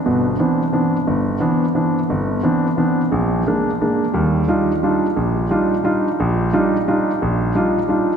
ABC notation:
X:1
M:3/4
L:1/8
Q:"Swing" 1/4=176
K:C
V:1 name="Grand piano"
[G,,,B,,]2 [E,B,CD] z [E,B,CD] z | G,,,2 [E,B,CD] z [E,B,CD] z | G,,,2 [E,B,CD] z [E,B,CD] z | _B,,,2 [_A,_B,D] z [A,B,D] z |
[K:Eb] [E,,G,]2 [G,DEF] z [G,DEF] z | B,,,2 [G,DEF] z [G,DEF] z | B,,,2 [G,DEF] z [G,DEF] z | B,,,2 [G,DEF] z [G,DEF] z |]